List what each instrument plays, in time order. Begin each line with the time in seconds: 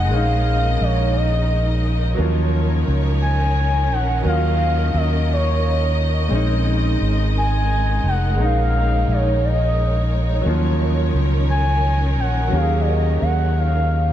Already playing: fingered electric bass F1, string section C#3 G#3 D#4 A#4 D#5, grand piano G#3 C4 C#4 D#4, soft synth lead F#5
0.08 fingered electric bass A#1, grand piano G#3 A#3
0.13 grand piano C#4 D#4, soft synth lead F5
0.81 fingered electric bass A#1, soft synth lead C#5
1.16 soft synth lead D#5
2.14 string section D#3 C#4 C#5, grand piano F#3 A#3
2.19 fingered electric bass D#2, grand piano F3 C#4
2.88 fingered electric bass C#2
3.22 soft synth lead G#5
3.91 fingered electric bass A#1, soft synth lead F#5
4.22 fingered electric bass D#2, grand piano F#3 A#3, string section D#5
4.26 grand piano C#4 F4, soft synth lead F5
4.35 grand piano F#4
4.94 fingered electric bass D#2, soft synth lead D#5
5.32 soft synth lead C#5
6.28 fingered electric bass A#1, string section C#3 G#3 D#4, grand piano G#3 C4 C#4
6.35 grand piano D#4
7.01 fingered electric bass G#1
7.38 soft synth lead G#5
8.04 fingered electric bass F1
8.08 soft synth lead F#5
8.35 grand piano G#3 A#3, string section C#5
8.39 fingered electric bass A#1, grand piano C#4 D#4
8.44 soft synth lead F5
9.08 fingered electric bass A#1, soft synth lead C#5
9.44 soft synth lead D#5
10.41 string section D#3 C#4 A#4, grand piano F#3 A#3
10.46 fingered electric bass D#2, grand piano F3 C#4
11.15 fingered electric bass C#2
11.50 soft synth lead G#5
12.18 fingered electric bass A#1, soft synth lead F#5
12.48 grand piano F#3 A#3
12.52 fingered electric bass D#2, grand piano C#4 G4, soft synth lead F5
12.61 grand piano G#4
12.80 soft synth lead D5
12.88 soft synth lead D#5
13.22 fingered electric bass D#2, soft synth lead F#5
13.59 soft synth lead F5